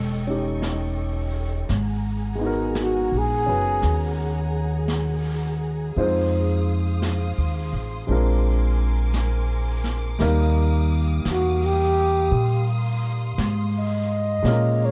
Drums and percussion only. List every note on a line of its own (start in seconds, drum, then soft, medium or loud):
0.62 brush sweep soft
0.62 snare soft
0.62 hi-hat pedal medium
1.69 brush sweep soft
1.69 snare soft
2.75 brush sweep soft
2.75 snare soft
2.75 hi-hat pedal medium
3.82 brush sweep soft
3.82 snare soft
4.88 brush sweep soft
4.88 snare soft
4.88 hi-hat pedal soft
5.95 brush sweep soft
7.02 brush sweep soft
7.02 snare soft
7.02 hi-hat pedal soft
8.07 brush sweep soft
9.14 brush sweep soft
9.14 snare soft
9.14 hi-hat pedal soft
9.84 snare soft
10.19 brush sweep soft
10.19 snare soft
11.25 brush sweep soft
11.25 snare soft
11.25 hi-hat pedal medium
12.31 brush sweep soft
13.38 brush sweep soft
13.38 snare soft
13.38 hi-hat pedal medium
14.45 brush sweep soft
14.45 snare soft